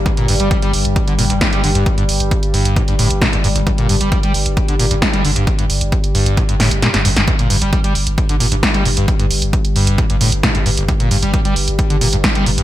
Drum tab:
HH |xxoxxxoxxxoxxxox|xxoxxxoxxxoxxxox|xxoxxxoxxxoxxxox|xxoxxxoxxxoxxxox|
SD |------------o---|------------o---|------------o---|----------o-oo-o|
BD |o---o---o---o---|o---o---o---o---|o---o---o---o---|o---o---o-------|

HH |xxoxxxoxxxoxxxox|xxoxxxoxxxoxxxox|xxoxxxoxxxoxxxox|
SD |------------o---|------------o---|------------o---|
BD |o---o---o---o---|o---o---o---o---|o---o---o---o---|